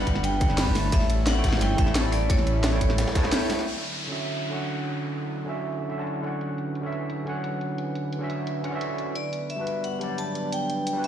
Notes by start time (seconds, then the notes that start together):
Already playing: G3 D4 B4 F#5
0.00 B4 F#5
0.07 G1, kick, closed hi-hat, ride
0.15 snare
0.23 G5, closed hi-hat, ride
0.40 G3 D4 B4 F#5, kick, closed hi-hat, ride
0.49 G3 D4 B4 A5, snare
0.58 B5, snare, closed hi-hat, open hi-hat
0.67 kick
0.73 A3 E4 C#5, snare, open hi-hat, ride
0.78 A5
0.92 A1 G3 C#4 E4 A4 E5, kick, closed hi-hat, ride
1.01 snare
1.10 closed hi-hat, ride
1.27 F#5, snare, closed hi-hat, ride
1.33 A3 E4 C#5
1.38 G5
1.44 A1, kick, snare, closed hi-hat, ride
1.48 snare, ride
1.52 snare, ride
1.57 snare, ride
1.61 G1 G5, snare, closed hi-hat, ride
1.76 A1 A3 E4 C#5 E5, kick, closed hi-hat, ride
1.81 A5
1.87 snare
1.95 snare, closed hi-hat, ride
2.04 snare
2.12 D5, snare, open hi-hat, ride
2.21 ride
2.30 C#5, kick, closed hi-hat, ride
2.39 snare
2.47 closed hi-hat, ride
2.63 snare, closed hi-hat, ride
2.70 A3 E4 C#5, snare
2.75 G5
2.81 A1, kick, closed hi-hat, ride
2.90 snare
2.98 snare, closed hi-hat, ride
3.07 snare, ride
3.14 A3 E4 C#5 A5, kick, snare, closed hi-hat, ride
3.22 A3 E4 C#5, snare, ride
3.26 G5
3.32 snare, closed hi-hat, open hi-hat
3.50 snare, open hi-hat, ride
3.59 snare, ride
3.66 D3 F#3 E4 C#5, downlifter
4.01 closed hi-hat
4.07 D3 C#4 F#4
4.12 E5
4.50 D3 C#4 F#4
4.55 F#5
4.70 closed hi-hat
5.04 closed hi-hat
5.21 closed hi-hat
5.38 closed hi-hat
5.44 D3 C#4 F#4
5.49 E5
5.55 closed hi-hat
5.73 closed hi-hat
5.89 D3 C#4 F#4 E5, closed hi-hat
5.97 D3 C#4 F#4 A5
6.07 closed hi-hat
6.22 D3 C#4 F#4, closed hi-hat
6.26 F#5
6.41 B4, closed hi-hat
6.58 closed hi-hat
6.75 closed hi-hat
6.81 D3 C#4 F#4
6.86 E5
6.92 closed hi-hat
7.10 closed hi-hat
7.24 D3 C#4 F#4, closed hi-hat
7.29 F#5
7.44 closed hi-hat
7.61 closed hi-hat
7.78 closed hi-hat
7.95 closed hi-hat
8.13 closed hi-hat
8.19 D3 C#4 F#4
8.24 E5
8.30 closed hi-hat
8.47 closed hi-hat
8.63 D3 C#4 F#4 F#5, closed hi-hat
8.70 D3 C#4 F#4
8.75 E5
8.81 closed hi-hat
8.98 closed hi-hat
9.15 B3 D4 D5, closed hi-hat
9.33 closed hi-hat
9.50 E5, closed hi-hat
9.56 G3 D4 F#4
9.61 B4
9.67 closed hi-hat
9.84 F#5, closed hi-hat
9.99 F#3 G3 D4, closed hi-hat
10.04 D5
10.18 A5, closed hi-hat
10.35 closed hi-hat
10.52 G5, closed hi-hat
10.70 closed hi-hat
10.87 closed hi-hat
10.93 G3 D4 F#4
10.98 B4
11.04 E5, closed hi-hat